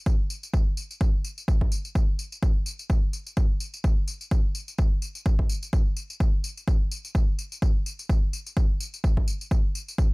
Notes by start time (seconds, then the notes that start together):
0.06 kick, tambourine
0.30 tambourine
0.43 tambourine
0.54 kick, tambourine
0.77 tambourine
0.91 tambourine
1.01 kick, tambourine
1.24 tambourine
1.38 tambourine
1.48 kick, tambourine
1.61 kick
1.72 tambourine
1.85 tambourine
1.95 kick, tambourine
2.19 tambourine
2.32 tambourine
2.43 kick, tambourine
2.66 tambourine
2.79 tambourine
2.90 kick, tambourine
3.13 tambourine
3.26 tambourine
3.37 kick, tambourine
3.60 tambourine
3.74 tambourine
3.84 kick, tambourine
4.08 tambourine
4.21 tambourine
4.31 kick, tambourine
4.55 tambourine
4.68 tambourine
4.78 kick, tambourine
5.02 tambourine
5.15 tambourine
5.26 kick, tambourine
5.39 kick
5.49 tambourine
5.63 tambourine
5.73 kick, tambourine
5.96 tambourine
6.10 tambourine
6.20 kick, tambourine
6.44 tambourine
6.57 tambourine
6.68 kick, tambourine
6.91 tambourine
7.05 tambourine
7.15 kick, tambourine
7.39 tambourine
7.52 tambourine
7.62 kick, tambourine
7.86 tambourine
7.99 tambourine
8.09 kick, tambourine
8.33 tambourine
8.46 tambourine
8.57 kick, tambourine
8.80 tambourine
8.94 tambourine
9.04 kick, tambourine
9.17 kick
9.28 tambourine
9.41 tambourine
9.51 kick, tambourine
9.75 tambourine
9.88 tambourine
9.98 kick, tambourine